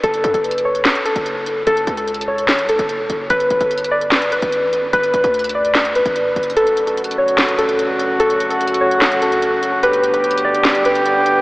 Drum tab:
HH |x-----x-----x-----x-----x---x---x---------x-----x-----x-----x-----x-----x-----------x-----------|x-----x-----x-----x-----x---x---x---------x-----x-----x-----x-----x-----x-----------x-----------|x-----x-----x-----x-----x---x---x---------x-----x-----x-----x-----x-----x-----------x-----------|x-----x-----x-----x-----x--x--x--x--------x-----x-----x-----x-----x-----x-----------x---x---x---|
CP |------------------------------------------------x-----------------------------------------------|------------------------------------------------x-----------------------------------------------|------------------------------------------------x-----------------------------------------------|------------------------------------------------x-----------------------------------------------|
SD |------------------------------------------------o-----------------------------------------------|------------------------------------------------o-----------------------------------------------|------------------------------------------------o-----------------------------------------------|------------------------------------------------o-----------------------------------------------|

HH |x-----x-----x-----x-----x---x---x---------x-----x-----x-----x-----x-----x-----------x-----------|x-----x-----x-----x-----x---x---x---------x-----x-----x-----x-----x-----x-----------x-----------|x-----x-----x-----x-----x---x---x---------x-----x-----x-----x-----x-----x-----------x-----------|
CP |------------------------------------------------x-----------------------------------------------|------------------------------------------------x-----------------------------------------------|------------------------------------------------x-----------------------------------------------|
SD |------------------------------------------------o-----------------------------------------------|------------------------------------------------o-----------------------------------------------|------------------------------------------------o-----------------------------------------------|